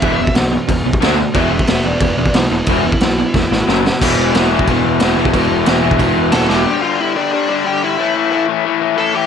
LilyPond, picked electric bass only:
\new Staff \with { instrumentName = "Picked electric bass" } { \clef bass \time 4/4 \key e \phrygian \tempo 4 = 181 e,,8 e,,8 b,,4 e,,8 c,8 d,4 | e,,8 e,,8 e,,8 e,,8 e,,8 e,,8 b,,8 e,,8 | e,,8 e,,8 b,,4 e,,8 gis,,8 fis,,4 | e,,8 e,,8 e,,4 e,,8 e,,8 e,,8 e,,8 |
e,,8 e,,8 e,,8 e,,8 e,,8 e,,8 e,,8 e,,8 | r1 | r1 | }